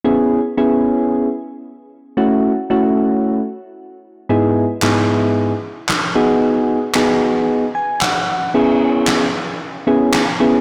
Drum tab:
CC |--------|--------|--------|--------|
CP |--------|--------|--x---x-|--x---x-|
SD |--------|--------|--o---o-|--o---o-|

CC |x-------|
CP |--x---x-|
SD |--o---o-|